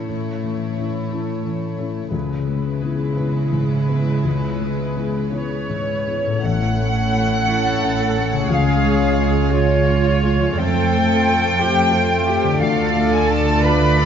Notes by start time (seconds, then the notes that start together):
Already playing: A2 E3 A3 C#4 E4 A4 C#5
0.09 A2
0.43 E3 A3
0.77 C#4 E4
1.11 C#4 E4 A4
1.44 E3 C#4
1.78 A3 C#4 E4
2.11 C#2 C#3 G#3 E4 B4
2.46 G#3 B3
2.82 B3 E4 G#4
3.17 B3 E4 B4
3.52 G#2 E4
3.88 B3 E4
4.24 C#2 C#3
4.60 G#3
4.96 B3 E4 G#4
5.32 B3 E4 B4 C#5
5.69 G#2 E4
6.07 B3 E4
6.25 A2
6.30 A3
6.34 C#4
6.39 E4 F#5
6.43 A1 A3 C#4 E4 C#5 F#5
6.79 A3
7.13 C#4
7.48 E4 A4
7.83 C#4
8.16 A3
8.32 C#3
8.37 G#3
8.42 C#4
8.46 C#2 F4
8.50 C#2 G#3 F4 G#4 F5
8.84 G#3
9.19 C#4
9.52 F4 C#5
9.88 C#4
10.23 G#3
10.40 F3
10.44 A3
10.49 C4
10.53 F4
10.57 F2 A3 C4 A4 C5 G5
10.93 A3
11.27 C4
11.60 F4 G4
11.94 C4 F4
12.28 A3 G4
12.43 D3
12.48 A3
12.52 D4
12.57 D4 F4 D5 F5
12.61 D2 F4 A4
12.96 A3
13.11 G#5
13.29 D4 A5
13.62 F4 B4 B5
13.97 D4 A4